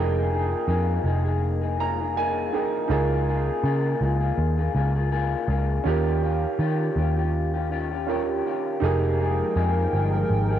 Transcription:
0.00 0.53 F1 loud
0.00 0.29 F3 medium
0.00 0.30 A#3 medium
0.00 0.30 D#4 medium
0.00 2.48 D#4 medium
0.00 0.31 G#4 loud
0.00 2.50 G#4 medium
0.00 2.51 A#4 medium
0.00 2.49 G5 medium
0.30 0.66 F3 medium
0.30 0.67 A#3 medium
0.30 0.67 D#4 medium
0.30 0.68 G#4 medium
0.68 0.98 F2 medium
0.68 1.03 F3 medium
0.68 1.04 A#3 medium
0.68 1.04 D#4 medium
0.68 1.05 G#4 medium
1.04 2.49 F1 loud
1.04 1.25 F3 medium
1.04 1.26 A#3 medium
1.04 1.24 D#4 medium
1.04 1.23 G#4 medium
1.24 1.63 A#3 medium
1.24 1.62 D#4 medium
1.24 1.60 G#4 medium
1.62 1.78 A#3 medium
1.62 1.79 D#4 medium
1.62 1.79 G#4 medium
1.79 1.99 F3 medium
1.79 2.00 A#3 medium
1.79 1.99 D#4 medium
1.79 1.98 G#4 medium
1.79 2.14 A#5 medium
2.00 2.16 A#3 soft
2.00 2.16 D#4 medium
2.00 2.16 G#4 medium
2.16 2.52 F3 medium
2.16 2.53 A#3 loud
2.16 2.53 D#4 loud
2.16 2.54 G#4 loud
2.16 2.87 G#5 medium
2.53 2.90 F3 medium
2.53 2.89 A#3 medium
2.53 2.86 D#4 medium
2.53 2.91 D#4 medium
2.53 2.90 G#4 medium
2.53 2.91 A#4 medium
2.53 2.90 G5 soft
2.88 3.49 C#2 loud
2.88 3.26 C#3 loud
2.88 3.27 A#3 loud
2.88 5.81 D#4 medium
2.88 5.82 F4 medium
2.88 3.27 F4 medium
2.88 5.83 G#4 medium
2.88 3.28 G#4 loud
2.93 5.83 A#4 medium
3.27 3.63 C#3 medium
3.27 3.63 A#3 medium
3.27 3.64 F4 medium
3.27 3.64 G#4 medium
3.64 3.93 C#3 loud
3.64 4.00 C#3 medium
3.64 4.00 A#3 medium
3.64 4.01 F4 medium
3.64 4.02 G#4 loud
4.01 4.31 C#2 loud
4.01 4.21 C#3 medium
4.01 4.22 A#3 medium
4.01 4.20 F4 medium
4.01 4.19 G#4 medium
4.20 4.59 A#3 soft
4.20 4.58 F4 medium
4.20 4.56 G#4 medium
4.38 4.67 D#2 medium
4.57 4.74 A#3 medium
4.57 4.74 F4 medium
4.57 4.75 G#4 medium
4.74 5.34 C#2 loud
4.74 4.95 C#3 medium
4.74 4.96 A#3 medium
4.74 4.95 F4 medium
4.74 4.94 G#4 medium
4.95 5.10 A#3 soft
4.95 5.11 F4 medium
4.95 5.11 G#4 medium
5.11 5.47 C#3 medium
5.11 5.48 A#3 medium
5.11 5.49 F4 medium
5.11 5.49 G#4 loud
5.48 5.78 C#2 loud
5.48 5.85 C#3 medium
5.48 5.85 A#3 medium
5.48 5.85 F4 medium
5.48 5.86 G#4 medium
5.84 6.45 D#2 loud
5.84 6.21 D#3 medium
5.84 8.03 C#4 medium
5.84 6.22 C#4 loud
5.84 8.03 F4 medium
5.84 6.23 F4 medium
5.84 6.23 G4 loud
5.84 8.04 G4 medium
5.89 8.05 A#4 medium
6.22 6.58 D#3 medium
6.22 6.58 C#4 medium
6.22 6.59 F4 medium
6.22 6.59 G4 medium
6.59 6.95 D#3 medium
6.59 6.89 D#3 loud
6.59 6.96 C#4 medium
6.59 6.97 F4 loud
6.59 6.97 G4 medium
6.96 8.40 D#2 medium
6.96 7.17 D#3 medium
6.96 7.17 C#4 medium
6.96 7.17 F4 medium
6.96 7.16 G4 medium
7.17 7.55 C#4 medium
7.17 7.54 F4 medium
7.17 7.53 G4 medium
7.54 7.70 C#4 medium
7.54 7.71 F4 medium
7.54 7.71 G4 medium
7.71 7.91 D#3 medium
7.71 7.92 C#4 medium
7.71 7.91 F4 medium
7.71 7.89 G4 medium
7.91 8.08 C#4 medium
7.91 8.08 F4 medium
7.91 8.08 G4 medium
8.07 8.44 D#3 medium
8.07 8.81 C#4 medium
8.07 8.45 C#4 medium
8.07 8.82 F4 soft
8.07 8.46 F4 medium
8.07 8.80 G4 soft
8.07 8.46 G4 loud
8.07 8.82 A#4 medium
8.45 8.82 D#3 medium
8.45 8.82 C#4 medium
8.45 8.83 F4 medium
8.45 8.83 G4 medium
8.80 9.41 F1 loud
8.80 10.59 F3 medium
8.80 9.18 F3 medium
8.80 10.59 G#3 medium
8.80 9.19 A#3 medium
8.80 10.59 D#4 medium
8.80 9.20 D#4 loud
8.80 10.59 G4 medium
8.80 10.59 G#4 medium
8.80 10.59 A#4 loud
8.80 10.59 G5 medium
8.84 9.20 G#4 loud
8.84 10.59 A#4 medium
9.19 9.54 F3 medium
9.19 9.55 A#3 medium
9.19 9.55 D#4 medium
9.19 9.55 G#4 medium
9.55 9.85 F2 loud
9.55 9.92 F3 medium
9.55 9.93 A#3 medium
9.55 9.93 D#4 medium
9.55 9.93 G#4 loud
9.93 10.22 G1 medium
9.93 10.13 F3 medium
9.93 10.14 A#3 medium
9.93 10.13 D#4 medium
9.93 10.12 G#4 medium
10.13 10.51 A#3 soft
10.13 10.50 D#4 medium
10.13 10.49 G#4 medium
10.30 10.59 G#1 loud
10.50 10.59 A#3 medium
10.50 10.59 D#4 medium
10.50 10.59 G#4 medium

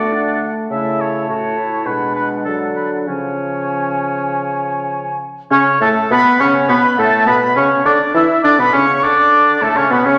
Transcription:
0.00 0.39 D3 medium
0.00 0.70 A3 medium
0.00 0.14 F#4 medium
0.00 0.41 D5 medium
0.00 0.12 F#5 medium
0.12 0.50 D4 medium
0.12 0.50 F#5 medium
0.70 1.25 C#3 medium
0.70 1.57 A3 medium
0.70 1.30 E4 medium
0.70 1.02 E5 medium
0.70 1.24 A5 medium
1.01 1.29 C#5 medium
1.28 1.87 A2 medium
1.28 1.58 F#4 medium
1.28 1.88 C#5 medium
1.28 1.88 A5 medium
1.57 1.88 E4 medium
1.86 2.45 B2 medium
1.86 2.48 G#3 medium
1.86 3.09 D4 medium
1.86 2.15 B4 medium
1.86 2.46 F#5 medium
2.16 2.29 B4 medium
2.45 3.08 D3 medium
2.45 3.09 F#3 medium
2.45 2.59 A4 medium
2.45 3.06 F#5 medium
2.76 2.90 B4 soft
3.07 5.20 C#3 medium
3.07 5.20 F3 medium
3.07 5.20 C#4 medium
3.07 5.16 C#5 medium
3.07 5.16 G#5 medium
5.51 5.79 C#3 loud
5.51 5.64 C#4 medium
5.51 5.65 C#4 loud
5.51 5.79 C#5 loud
5.51 5.59 C#6 loud
5.81 5.94 A2 medium
5.81 5.94 A3 medium
5.81 6.13 A3 loud
5.81 6.10 A4 loud
5.81 5.89 A5 loud
6.10 6.24 B2 loud
6.10 6.39 B3 loud
6.10 6.43 B3 medium
6.10 6.42 B4 loud
6.10 6.39 B5 loud
6.40 6.68 C#3 medium
6.40 6.53 C#4 loud
6.40 6.71 C#4 loud
6.40 6.72 C#5 loud
6.40 6.47 C#6 loud
6.68 6.82 B2 loud
6.68 6.81 B3 loud
6.68 7.00 B3 loud
6.68 6.99 B4 loud
6.68 6.97 B5 loud
6.98 7.26 A2 loud
6.98 7.26 A3 loud
6.98 7.30 A3 loud
6.98 7.12 A4 loud
6.98 7.29 A5 loud
7.26 7.55 B2 medium
7.26 7.40 B3 medium
7.26 7.58 B3 loud
7.26 7.41 B4 loud
7.26 7.56 B5 loud
7.56 7.69 C#3 medium
7.56 7.69 C#4 loud
7.56 7.86 C#4 loud
7.56 7.88 C#5 medium
7.56 7.63 C#6 loud
7.85 7.99 D3 loud
7.85 7.99 D4 loud
7.85 8.14 D4 medium
7.85 8.15 D5 loud
7.85 7.92 D6 loud
8.14 8.27 E3 loud
8.14 8.28 E4 medium
8.14 8.46 E4 loud
8.14 8.44 E5 loud
8.14 8.23 E6 loud
8.43 8.60 D3 loud
8.43 8.51 D4 loud
8.43 8.61 D4 loud
8.43 8.59 D5 loud
8.43 8.58 D6 loud
8.58 8.73 B2 medium
8.58 8.65 B3 medium
8.58 8.74 B3 medium
8.58 8.66 B4 medium
8.58 8.75 B5 loud
8.73 9.05 C#3 loud
8.73 8.86 C#4 loud
8.73 8.87 C#4 loud
8.73 9.06 C#5 loud
8.73 9.05 C#6 loud
9.02 9.63 D3 loud
9.02 9.64 D4 loud
9.02 9.60 D4 loud
9.02 9.65 D5 loud
9.02 9.63 D6 loud
9.61 9.75 A2 medium
9.61 9.68 A3 medium
9.61 9.78 A3 medium
9.61 9.79 A4 loud
9.61 9.77 A5 loud
9.75 9.90 C#3 medium
9.75 9.92 C#4 loud
9.75 9.93 C#4 medium
9.75 9.91 C#5 medium
9.75 9.93 C#6 loud
9.90 10.04 B2 medium
9.90 10.06 B3 loud
9.90 10.07 B3 loud
9.90 9.98 B4 medium
9.90 10.07 B5 loud
10.05 10.18 C#3 loud
10.05 10.18 C#4 loud
10.05 10.18 C#5 medium
10.05 10.18 C#6 loud

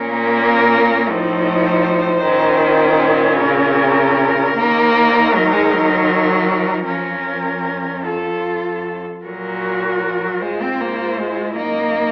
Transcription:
0.00 1.11 A#2 medium
0.00 1.11 A#3 loud
0.00 1.12 C#4 medium
0.00 1.12 A#4 medium
1.09 2.25 A2 medium
1.09 2.21 F3 loud
1.09 2.25 D#4 medium
1.09 3.38 C5 medium
2.22 4.57 A#2 medium
2.22 3.38 D#3 loud
2.22 4.59 C#4 medium
3.37 4.56 C#3 loud
3.37 6.85 A#4 medium
4.56 6.82 D#2 medium
4.56 5.36 A#3 loud
4.56 6.85 D#4 medium
5.35 5.54 F#3 loud
5.53 5.74 G#3 loud
5.72 6.86 F#3 loud
6.85 9.01 F2 medium
6.85 8.02 F3 medium
6.85 8.06 C#4 medium
6.85 8.02 A#4 medium
8.05 9.04 F4 medium
8.05 9.03 A4 medium
9.25 10.38 A#2 medium
9.25 10.04 F#3 medium
9.25 10.43 F#4 medium
9.25 10.43 A#4 medium
10.03 10.26 F3 medium
10.24 10.43 F#3 medium
10.41 11.59 G#2 medium
10.41 10.63 G#3 medium
10.41 11.59 F4 medium
10.41 11.55 C5 medium
10.62 10.82 C4 medium
10.81 11.21 A#3 medium
11.19 11.55 G#3 medium
11.56 12.12 F#2 medium
11.56 12.12 A#3 medium
11.56 12.12 D#4 soft
11.56 12.12 D#5 medium

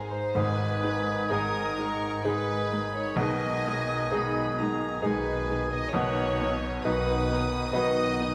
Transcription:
0.00 0.12 G#1 soft
0.00 0.11 G#2 soft
0.00 0.33 G#2 soft
0.00 0.37 D#4 soft
0.00 0.39 D#4 soft
0.00 0.38 G#4 soft
0.00 0.38 A#4 soft
0.00 0.11 C5 soft
0.00 0.13 C5 soft
0.00 0.37 C5 soft
0.11 0.36 C5 soft
0.11 0.37 C5 medium
0.34 3.14 G#1 medium
0.34 1.20 G#1 medium
0.34 3.14 G#2 medium
0.34 1.19 G#2 medium
0.34 1.74 G#2 medium
0.34 2.21 D#3 medium
0.34 5.89 G#3 medium
0.34 0.44 G#3 soft
0.34 5.88 D#4 medium
0.34 2.21 D#4 medium
0.34 0.44 D#4 soft
0.34 1.31 B4 medium
0.34 2.22 G#5 medium
0.34 0.81 G#5 medium
0.34 2.21 D#6 medium
0.83 0.91 G#3 soft
0.83 0.91 D#4 soft
0.83 1.32 B5 medium
1.30 2.15 G#1 medium
1.30 2.14 G#2 medium
1.30 2.21 G#3 soft
1.30 1.39 G#3 soft
1.30 2.21 D#4 soft
1.30 1.40 D#4 soft
1.30 2.21 G#4 soft
1.30 2.25 A#4 medium
1.30 1.79 D#6 medium
1.79 1.87 G#3 soft
1.79 1.87 D#4 soft
1.79 2.26 C#6 medium
2.23 3.07 G#2 medium
2.23 3.17 D#3 medium
2.23 3.14 G#3 soft
2.23 2.34 G#3 soft
2.23 3.15 D#4 medium
2.23 3.14 D#4 soft
2.23 2.34 D#4 soft
2.23 3.14 G#4 soft
2.23 2.93 B4 medium
2.23 3.16 G#5 soft
2.23 3.19 B5 medium
2.23 3.16 D#6 soft
2.27 3.08 G#1 medium
2.72 2.80 G#3 soft
2.72 2.80 D#4 soft
2.95 3.18 C#5 medium
3.16 5.88 B1 medium
3.16 4.02 B1 medium
3.16 5.88 B2 medium
3.16 4.02 B2 medium
3.16 4.99 D#3 medium
3.16 3.27 G#3 medium
3.16 3.26 D#4 medium
3.16 4.99 D#4 medium
3.16 4.58 D#5 medium
3.16 5.00 G#5 medium
3.16 5.00 D#6 medium
3.21 4.12 G#5 medium
3.67 3.75 G#3 soft
3.67 3.75 D#4 soft
4.11 4.92 B1 medium
4.11 4.93 B2 medium
4.11 4.99 G#3 soft
4.11 4.21 G#3 soft
4.11 4.99 D#4 soft
4.11 4.22 D#4 soft
4.11 4.99 G#4 soft
4.11 4.58 B5 medium
4.58 4.69 G#3 soft
4.58 4.69 D#4 soft
4.58 5.03 A#5 medium
5.02 5.83 B1 medium
5.02 5.82 B2 medium
5.02 5.91 D#3 medium
5.02 5.89 G#3 soft
5.02 5.13 G#3 soft
5.02 5.89 D#4 soft
5.02 5.12 D#4 soft
5.02 5.92 D#4 medium
5.02 5.89 G#4 medium
5.02 5.66 B4 medium
5.02 5.92 G#5 medium
5.02 5.93 G#5 medium
5.02 5.91 D#6 medium
5.49 5.57 G#3 soft
5.49 5.58 D#4 soft
5.71 5.93 D#5 medium
5.92 6.73 B1 medium
5.92 8.35 B1 medium
5.92 8.35 B2 medium
5.92 6.73 B2 medium
5.92 6.56 D#3 medium
5.92 8.35 B3 medium
5.92 6.03 B3 medium
5.92 8.35 D#4 medium
5.92 6.56 D#4 medium
5.92 6.03 D#4 medium
5.92 6.83 C#5 medium
5.92 6.56 F#5 medium
5.92 6.39 F#5 medium
5.92 6.56 D#6 medium
6.39 6.49 B3 soft
6.39 6.49 D#4 soft
6.39 6.84 D#5 medium
6.84 7.63 B1 medium
6.84 7.63 B2 medium
6.84 7.70 D#3 medium
6.84 7.70 F#3 soft
6.84 6.94 B3 medium
6.84 7.70 D#4 medium
6.84 7.70 D#4 soft
6.84 6.94 D#4 medium
6.84 7.74 B4 medium
6.84 7.71 B4 soft
6.84 7.70 F#5 medium
6.84 8.35 D#6 medium
6.84 7.70 D#6 medium
7.31 7.39 B3 soft
7.31 7.39 D#4 medium
7.72 8.35 B1 medium
7.72 8.35 B2 medium
7.72 8.35 D#3 medium
7.72 8.35 F#3 medium
7.72 7.83 B3 soft
7.72 8.35 D#4 medium
7.72 7.83 D#4 medium
7.72 8.35 B4 medium
7.72 8.35 D#5 medium
7.72 8.35 F#5 medium
7.72 8.35 D#6 medium
8.20 8.28 B3 medium
8.20 8.28 D#4 medium

